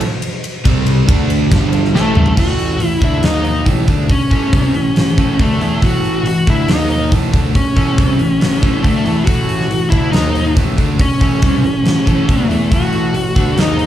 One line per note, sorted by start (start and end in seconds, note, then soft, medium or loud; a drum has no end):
0.01 ride medium
0.22 ride loud
0.44 ride medium
0.64 1.05 C2 loud
0.64 1.07 C3 medium
0.64 1.07 G3 medium
0.64 1.07 C4 loud
0.64 kick loud
0.64 ride loud
0.86 ride medium
1.08 1.48 D2 medium
1.08 1.50 D3 medium
1.08 1.50 A3 loud
1.08 1.51 D4 loud
1.08 kick loud
1.08 ride loud
1.30 ride medium
1.51 1.91 G1 loud
1.51 1.94 G2 medium
1.51 1.94 D3 loud
1.51 1.94 G3 loud
1.51 kick loud
1.51 snare loud
1.51 ride loud
1.73 ride medium
1.85 snare soft
1.94 2.14 A1 loud
1.94 2.15 A2 loud
1.94 2.15 E3 loud
1.94 2.16 A3 loud
1.94 2.39 A3 medium
1.94 snare medium
2.15 2.36 G1 medium
2.15 2.36 G2 medium
2.15 2.36 D3 medium
2.15 2.36 G3 medium
2.15 mid tom medium
2.26 floor tom medium
2.36 2.77 A1 medium
2.36 2.79 A2 medium
2.36 2.79 E3 loud
2.36 2.80 A3 medium
2.36 2.88 F#4 loud
2.36 kick loud
2.36 crash loud
2.58 open hi-hat soft
2.79 3.00 A1 medium
2.79 2.97 A2 medium
2.79 2.98 E3 medium
2.79 open hi-hat medium
2.88 3.04 E4 loud
3.00 3.22 D2 medium
3.00 3.23 D3 medium
3.00 3.23 A3 medium
3.00 3.23 D4 loud
3.00 kick loud
3.00 open hi-hat soft
3.04 3.25 E4 medium
3.23 3.63 D#2 medium
3.23 3.64 D#3 medium
3.23 3.65 A#3 medium
3.23 3.66 D#4 loud
3.23 3.65 D#4 medium
3.23 snare loud
3.23 open hi-hat medium
3.45 open hi-hat soft
3.65 3.87 A1 medium
3.65 3.87 A2 medium
3.65 3.87 E3 loud
3.65 3.86 A3 loud
3.65 kick loud
3.65 open hi-hat medium
3.88 4.08 D2 medium
3.88 4.08 D3 medium
3.88 4.09 A3 medium
3.88 4.09 D4 medium
3.88 kick medium
3.88 open hi-hat medium
4.09 5.44 C#4 medium
4.09 muted overdriven electric guitar stroke soft
4.09 muted picked electric bass stroke soft
4.09 kick loud
4.09 open hi-hat medium
4.30 4.51 A1 medium
4.30 4.52 A2 medium
4.30 4.52 E3 medium
4.30 4.52 A3 medium
4.30 kick medium
4.30 open hi-hat soft
4.52 4.73 C2 medium
4.52 4.73 C3 medium
4.52 4.73 G3 medium
4.52 4.74 C4 medium
4.52 kick loud
4.52 open hi-hat medium
4.74 4.94 A1 medium
4.74 4.91 A2 medium
4.74 4.92 E3 medium
4.74 open hi-hat soft
4.95 5.16 A1 medium
4.95 5.14 A2 medium
4.95 5.14 E3 medium
4.95 snare loud
4.95 open hi-hat medium
5.18 5.38 A1 medium
5.18 5.39 A2 medium
5.18 5.39 E3 medium
5.18 5.39 A3 loud
5.18 kick loud
5.18 open hi-hat soft
5.39 5.59 D2 medium
5.39 5.60 D3 loud
5.39 5.60 A3 loud
5.39 5.84 A3 medium
5.39 5.61 D4 loud
5.39 kick loud
5.39 open hi-hat medium
5.60 5.81 E2 medium
5.60 5.81 E3 medium
5.60 5.81 B3 medium
5.60 5.81 E4 loud
5.60 open hi-hat soft
5.81 6.22 A1 medium
5.81 6.24 A2 medium
5.81 6.24 E3 medium
5.81 6.25 A3 loud
5.81 6.27 F#4 loud
5.81 kick medium
5.81 open hi-hat medium
6.04 open hi-hat soft
6.24 6.45 A1 medium
6.24 6.42 A2 medium
6.24 6.43 E3 medium
6.24 6.47 F#4 medium
6.24 open hi-hat medium
6.47 6.67 D2 medium
6.47 6.68 D3 medium
6.47 6.68 A3 medium
6.47 6.68 D4 loud
6.47 6.71 E4 medium
6.47 kick loud
6.47 open hi-hat soft
6.68 7.08 D#2 medium
6.68 7.11 D#3 medium
6.68 7.11 A#3 loud
6.68 7.11 D#4 loud
6.68 7.10 D#4 medium
6.68 snare loud
6.68 open hi-hat medium
6.90 open hi-hat soft
7.12 7.32 A1 medium
7.12 7.33 A2 loud
7.12 7.33 E3 loud
7.12 7.32 A3 loud
7.12 kick loud
7.12 open hi-hat medium
7.33 7.53 D2 medium
7.33 7.54 D3 medium
7.33 7.54 A3 medium
7.33 7.54 D4 medium
7.33 kick loud
7.33 open hi-hat medium
7.55 8.88 C#4 medium
7.55 muted picked electric bass stroke soft
7.55 muted overdriven electric guitar stroke soft
7.55 kick loud
7.55 open hi-hat medium
7.76 7.97 A1 medium
7.76 7.97 A2 medium
7.76 7.97 E3 medium
7.76 7.97 A3 medium
7.76 kick medium
7.76 open hi-hat soft
7.97 8.18 C2 medium
7.97 8.18 C3 loud
7.97 8.19 G3 loud
7.97 8.19 C4 loud
7.97 kick loud
7.97 open hi-hat medium
8.19 8.39 A1 medium
8.19 8.36 A2 medium
8.19 8.36 E3 medium
8.19 open hi-hat soft
8.41 8.61 A1 medium
8.41 8.58 A2 medium
8.41 8.58 E3 medium
8.41 snare loud
8.41 open hi-hat medium
8.62 8.83 A1 medium
8.62 8.83 A2 medium
8.62 8.83 E3 loud
8.62 8.83 A3 loud
8.62 kick medium
8.62 open hi-hat soft
8.82 9.04 D2 medium
8.82 9.04 D3 medium
8.82 9.23 A3 medium
8.82 9.05 A3 loud
8.82 9.05 D4 loud
8.82 kick loud
8.82 open hi-hat medium
9.05 9.25 E2 medium
9.05 9.26 E3 medium
9.05 9.26 B3 medium
9.05 9.27 E4 loud
9.05 open hi-hat soft
9.24 9.67 A1 medium
9.24 9.69 A2 medium
9.24 9.69 E3 medium
9.24 9.70 A3 medium
9.24 9.92 F#4 medium
9.24 kick loud
9.24 open hi-hat medium
9.49 open hi-hat soft
9.61 snare soft
9.70 9.90 A1 medium
9.70 9.87 A2 medium
9.70 9.87 E3 medium
9.70 open hi-hat medium
9.90 10.12 D2 medium
9.90 10.12 D3 loud
9.90 10.12 A3 medium
9.90 10.13 D4 loud
9.90 10.11 E4 loud
9.90 kick loud
9.90 open hi-hat soft
10.12 10.53 D#2 medium
10.12 10.55 D#3 medium
10.12 10.55 A#3 loud
10.12 10.53 D#4 medium
10.12 10.55 D#4 loud
10.12 snare loud
10.12 open hi-hat medium
10.35 open hi-hat medium
10.55 10.77 A1 medium
10.55 10.77 A2 loud
10.55 10.77 E3 medium
10.55 10.76 A3 loud
10.55 kick loud
10.55 open hi-hat medium
10.78 10.98 D2 medium
10.78 10.99 D3 medium
10.78 10.99 A3 medium
10.78 10.99 D4 medium
10.78 kick medium
10.78 open hi-hat soft
10.99 12.33 C#4 medium
10.99 muted overdriven electric guitar stroke medium
10.99 muted picked electric bass stroke soft
10.99 kick loud
10.99 open hi-hat medium
11.19 11.41 A1 medium
11.19 11.41 A2 medium
11.19 11.41 E3 medium
11.19 11.41 A3 medium
11.19 kick medium
11.19 open hi-hat soft
11.41 11.63 C2 medium
11.41 11.62 C3 medium
11.41 11.63 G3 medium
11.41 11.63 C4 medium
11.41 kick loud
11.41 open hi-hat medium
11.63 11.84 A1 medium
11.63 11.81 A2 medium
11.63 11.81 E3 medium
11.63 open hi-hat soft
11.84 12.05 A1 medium
11.84 12.03 A2 medium
11.84 12.03 E3 medium
11.84 snare loud
11.84 open hi-hat medium
12.06 12.27 A1 medium
12.06 12.27 A2 medium
12.06 12.28 E3 loud
12.06 12.27 A3 loud
12.06 kick medium
12.06 open hi-hat soft
12.27 12.49 D2 loud
12.27 12.49 D3 loud
12.27 12.49 A3 loud
12.27 12.49 D4 loud
12.27 kick loud
12.27 open hi-hat medium
12.32 12.74 A3 medium
12.49 12.70 E2 medium
12.49 12.70 E3 medium
12.49 12.71 B3 medium
12.49 12.71 E4 medium
12.49 open hi-hat soft
12.70 13.12 A1 medium
12.70 13.13 A2 medium
12.70 13.13 E3 medium
12.70 13.14 A3 loud
12.70 13.61 F#4 loud
12.70 kick loud
12.70 open hi-hat medium
12.93 open hi-hat soft
13.14 13.35 A1 medium
13.14 13.31 A2 medium
13.14 13.32 E3 medium
13.14 open hi-hat medium
13.36 13.56 D2 medium
13.36 13.57 D3 medium
13.36 13.57 A3 loud
13.36 13.57 D4 loud
13.36 kick loud
13.36 open hi-hat medium
13.57 13.86 D#2 medium
13.57 13.86 D#3 medium
13.57 13.86 A#3 medium
13.57 13.86 D#4 loud
13.57 13.86 D#4 medium
13.57 snare loud
13.57 open hi-hat medium
13.79 open hi-hat soft